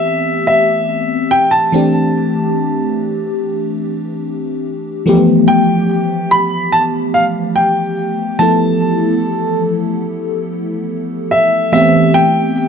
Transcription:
Already playing: fm electric piano E3 A3 B3 C4 G4, grand piano E5
0.47 grand piano E5
1.31 grand piano G5
1.51 grand piano A5
1.72 fm electric piano E3 A3 C4 D4 G4
5.06 fm electric piano E3 F3 A3 B3 G4
5.48 grand piano G5
6.31 grand piano B5
6.72 grand piano A5
7.14 grand piano F5
7.56 grand piano G5
8.39 fm electric piano F3 A3 B3 E4 A4, grand piano A5
11.31 grand piano E5
11.72 fm electric piano E3 A3 B3 C4 G4, grand piano E5
12.14 grand piano G5

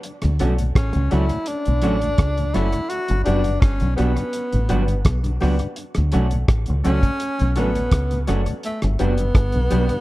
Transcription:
0.03 closed hi-hat
0.22 tonewheel organ D2 A2, fingered electric bass D2, cross-stick, closed hi-hat
0.39 fingered electric bass B1, tonewheel organ D3 F#3 C#4, clean electric guitar F#3 A3 C#4 F#4, grand piano A4 C#5 D5 F#5, closed hi-hat
0.58 tonewheel organ D2 A2, closed hi-hat
0.75 fingered electric bass A1, tenor saxophone C#4, kick, cross-stick, closed hi-hat
0.93 fingered electric bass C#2, tonewheel organ D2 A2, grand piano D5 F#5, closed hi-hat
1.10 fingered electric bass C#2, tonewheel organ D3 F#3 C#4, clean electric guitar F#3 A3 C#4 F#4, tenor saxophone E4, grand piano A4 C#5 D5 F#5, closed hi-hat
1.29 tonewheel organ D2 A2, closed hi-hat
1.46 tenor saxophone D4, closed hi-hat
1.65 fingered electric bass B1, tonewheel organ D2 A2, closed hi-hat
1.82 fingered electric bass A1, tonewheel organ D3 F#3 C#4, clean electric guitar F#3 A3 C#4 F#4, grand piano A4 C#5 D5 F#5, closed hi-hat
2.02 tonewheel organ D2 A2, closed hi-hat
2.18 fingered electric bass C#2, kick, cross-stick, closed hi-hat
2.37 tonewheel organ D2 A2, closed hi-hat
2.54 fingered electric bass F#1, tonewheel organ D3 F#3 C#4, clean electric guitar F#3 A3 C#4 F#4, tenor saxophone E4, grand piano A4 C#5 D5 F#5, cross-stick, closed hi-hat
2.72 tonewheel organ D2 A2, closed hi-hat
2.89 tenor saxophone F#4, closed hi-hat
3.08 fingered electric bass G1, tonewheel organ G2 D3, closed hi-hat
3.24 fingered electric bass F#1, tonewheel organ F#3 G3 B3, clean electric guitar F#3 B3 D4, tenor saxophone D4, grand piano G4 B4 D5 F#5, closed hi-hat
3.28 clean electric guitar F#4
3.44 tonewheel organ G2 D3, closed hi-hat
3.60 fingered electric bass G1, tenor saxophone C#4, kick, cross-stick, closed hi-hat
3.80 fingered electric bass B1, tonewheel organ G2 D3, grand piano D5 F#5, closed hi-hat
3.96 fingered electric bass B1, clean electric guitar F#3 B3 D4 F#4, tonewheel organ F#3 G3 B3, tenor saxophone B3, grand piano G4 B4 D5 F#5, closed hi-hat
4.17 tonewheel organ G2 D3, closed hi-hat
4.33 closed hi-hat
4.53 fingered electric bass A1, tonewheel organ G2 D3, closed hi-hat
4.69 fingered electric bass G1, tonewheel organ F#3 G3 B3, clean electric guitar F#3 B3 D4 F#4, grand piano G4 B4 D5 F#5, closed hi-hat
4.87 tonewheel organ G2 D3, closed hi-hat
5.05 fingered electric bass B1, kick, cross-stick, closed hi-hat
5.24 tonewheel organ G2 D3, closed hi-hat
5.40 fingered electric bass C#2, clean electric guitar F#3 B3 D4 F#4, tonewheel organ F#3 G3 B3, grand piano G4 B4 D5 F#5, cross-stick, open hi-hat
5.59 tonewheel organ G2 D3, closed hi-hat
5.76 closed hi-hat
5.95 tonewheel organ D2 A2, fingered electric bass D2, cross-stick, closed hi-hat
6.12 fingered electric bass B1, tonewheel organ D3 F#3 C#4, clean electric guitar F#3 A3 C#4 F#4, grand piano A4 C#5 D5 F#5, closed hi-hat
6.31 tonewheel organ D2 A2, closed hi-hat
6.48 fingered electric bass A1, kick, cross-stick, closed hi-hat
6.66 fingered electric bass C#2, tonewheel organ D2 A2, grand piano D5 F#5, closed hi-hat
6.84 fingered electric bass C#2, tonewheel organ D3 F#3 C#4, clean electric guitar F#3 A3 C#4 F#4, tenor saxophone C#4, grand piano A4 C#5 D5 F#5, closed hi-hat
7.03 tonewheel organ D2 A2, kick, closed hi-hat
7.20 closed hi-hat
7.39 fingered electric bass B1, tonewheel organ D2 A2, closed hi-hat
7.56 fingered electric bass A1, tonewheel organ D3 F#3 C#4, clean electric guitar F#3 A3 C#4 F#4, tenor saxophone B3, grand piano A4 C#5 D5 F#5, closed hi-hat
7.75 tonewheel organ D2 A2, closed hi-hat
7.92 fingered electric bass C#2, kick, cross-stick, closed hi-hat
8.11 tonewheel organ D2 A2, closed hi-hat
8.27 fingered electric bass F#1, tonewheel organ D3 F#3 C#4, clean electric guitar F#3 A3 C#4 F#4, grand piano A4 C#5 D5 F#5, cross-stick, closed hi-hat
8.46 tonewheel organ D2 A2, closed hi-hat
8.63 tenor saxophone A3, closed hi-hat
8.82 fingered electric bass G1, tonewheel organ G2 D3, cross-stick, closed hi-hat
8.99 fingered electric bass F#1, clean electric guitar F#3 B3 D4 F#4, tonewheel organ F#3 G3 B3, tenor saxophone B3, grand piano G4 B4 D5 F#5, closed hi-hat
9.18 tonewheel organ G2 D3, closed hi-hat
9.35 fingered electric bass G1, kick, cross-stick, closed hi-hat
9.52 fingered electric bass B1, tonewheel organ G2 D3, grand piano D5 F#5, closed hi-hat
9.70 fingered electric bass B1, tonewheel organ F#3 G3 B3, clean electric guitar F#3 B3 D4 F#4, grand piano G4 B4 D5 F#5, closed hi-hat
9.89 tonewheel organ G2 D3, closed hi-hat

